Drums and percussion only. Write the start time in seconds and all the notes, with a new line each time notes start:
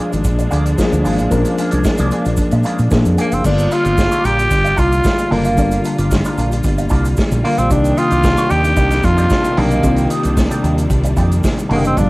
0.13 closed hi-hat, shaker
0.24 kick, closed hi-hat, shaker
0.38 closed hi-hat, shaker
0.51 closed hi-hat, shaker
0.66 closed hi-hat, shaker
0.78 kick, snare, shaker
0.92 closed hi-hat, shaker
1.05 open hi-hat, shaker
1.19 closed hi-hat, shaker
1.31 kick, closed hi-hat, shaker
1.45 closed hi-hat, shaker
1.58 closed hi-hat, shaker
1.71 closed hi-hat, shaker
1.84 kick, snare, shaker
1.98 closed hi-hat, shaker
2.11 closed hi-hat, shaker
2.25 closed hi-hat, shaker
2.37 kick, closed hi-hat, shaker
2.51 closed hi-hat, shaker
2.63 closed hi-hat, shaker
2.79 closed hi-hat, shaker
2.91 kick, snare, shaker
3.05 closed hi-hat, shaker
3.18 closed hi-hat, shaker
3.32 closed hi-hat, shaker
3.44 kick, crash, shaker
3.58 closed hi-hat, shaker
3.71 closed hi-hat, shaker
3.84 closed hi-hat, shaker
3.98 kick, snare, shaker
4.12 closed hi-hat, shaker
4.25 closed hi-hat, shaker
4.39 closed hi-hat, shaker
4.51 kick, closed hi-hat, shaker
4.64 closed hi-hat, shaker
4.77 kick, closed hi-hat, shaker
4.92 closed hi-hat, shaker
5.04 kick, snare, shaker
5.18 closed hi-hat, shaker
5.32 open hi-hat
5.45 closed hi-hat, shaker
5.57 kick, closed hi-hat, shaker
5.71 closed hi-hat, shaker
5.84 closed hi-hat, shaker
5.98 closed hi-hat, shaker
6.11 kick, snare, shaker
6.25 closed hi-hat, shaker
6.38 closed hi-hat, shaker
6.52 closed hi-hat, shaker
6.63 kick, closed hi-hat, shaker
6.78 closed hi-hat, shaker
6.89 kick, closed hi-hat, shaker
7.05 closed hi-hat, shaker
7.17 kick, snare, shaker
7.32 closed hi-hat, shaker
7.45 open hi-hat
7.58 closed hi-hat, shaker
7.71 kick, closed hi-hat, shaker
7.84 closed hi-hat, shaker
7.98 closed hi-hat, shaker
8.10 closed hi-hat, shaker
8.23 kick, snare, shaker
8.37 closed hi-hat, shaker
8.50 closed hi-hat, shaker
8.64 closed hi-hat, shaker
8.77 kick, closed hi-hat, shaker
8.90 snare, closed hi-hat, shaker
9.03 kick, closed hi-hat, shaker
9.18 closed hi-hat, shaker
9.30 kick, snare, shaker
9.44 closed hi-hat, shaker
9.57 open hi-hat
9.70 closed hi-hat, shaker
9.83 kick, closed hi-hat, shaker
9.96 closed hi-hat, shaker
10.10 closed hi-hat, shaker
10.23 closed hi-hat, shaker
10.37 kick, snare, shaker
10.51 closed hi-hat, shaker
10.64 closed hi-hat, shaker
10.78 closed hi-hat, shaker
10.90 kick, closed hi-hat, shaker
11.03 closed hi-hat, shaker
11.17 kick, closed hi-hat, shaker
11.31 closed hi-hat, shaker
11.43 kick, snare, shaker
11.57 closed hi-hat, shaker
11.70 open hi-hat
11.84 closed hi-hat, shaker
11.97 kick, closed hi-hat, shaker